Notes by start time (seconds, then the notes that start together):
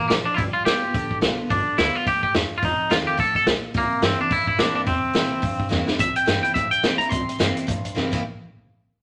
0.08 A1 F3 A#3, snare, open hi-hat
0.25 D4, muted upright bass stroke
0.34 G1 E4 F4, kick, open hi-hat
0.38 G3
0.53 F4, muted upright bass stroke
0.65 F1 G3 B3 F4 G4, snare, open hi-hat
0.82 G1 B3 F4
0.94 G1 D3, kick, open hi-hat
1.11 G1, kick
1.21 B1 G3 B3 F4, snare, open hi-hat
1.38 B3 F4, muted upright bass stroke
1.50 G1 G3 D4, kick, open hi-hat
1.78 D2 G3 B3 E4 F4, snare, open hi-hat
1.95 F4
2.06 D2 A2 G4, kick, open hi-hat
2.23 F2 G4, kick
2.34 E2 G2, snare, open hi-hat
2.50 muted upright bass stroke
2.58 F4
2.63 F1 F2 D#4, kick, open hi-hat
2.90 D#2 D#3 A3 C4 F4, snare, open hi-hat
3.06 F1 G4
3.17 F1 A2 A4, kick, open hi-hat
3.35 F1 A4, kick
3.46 B1 A#2, snare, open hi-hat
3.63 muted upright bass stroke
3.74 C2 C3 A#3, kick, open hi-hat
3.91 muted upright bass stroke
4.02 G2 E3 A#3 C4 E4, snare, open hi-hat
4.18 C4 D4 E4, muted upright bass stroke
4.31 G2 E4, kick, open hi-hat
4.47 A#2 E4, kick
4.59 A2 E3 A#3 C4 D4 E4, snare, open hi-hat
4.75 D4, muted upright bass stroke
4.87 E2 C3 C4, kick, open hi-hat
5.13 A#1 E3 A#3 C4 E4, snare, open hi-hat
5.30 C2 C4 E4
5.42 G2, kick, open hi-hat
5.59 C2, kick
5.69 E2 E3 A#3 C4 E4, snare
5.86 C4 E4, muted upright bass stroke, snare
5.98 C2 C3 E5, kick, closed hi-hat
6.16 G5, muted upright bass stroke, closed hi-hat
6.26 G2 E3 A#3 C4 E4, snare, closed hi-hat
6.43 C4 E4 G5, closed hi-hat
6.54 G2 A2 E5, kick, closed hi-hat
6.71 G5, muted upright bass stroke, closed hi-hat
6.83 C3 E3 A#3 C4 E4, snare, closed hi-hat
6.98 C4 E4 A#5, muted upright bass stroke, closed hi-hat
7.09 C2 C3 C6, kick, closed hi-hat
7.28 muted upright bass stroke, closed hi-hat
7.39 G2 E3 A#3 C4 E4, snare, closed hi-hat
7.55 C4 E4, closed hi-hat
7.67 G2 A2, kick, closed hi-hat
7.85 muted upright bass stroke, closed hi-hat
7.95 C3 E3 A#3 C4 E4, snare
8.12 C2 C3 E3 A#3 C4 E4, kick, crash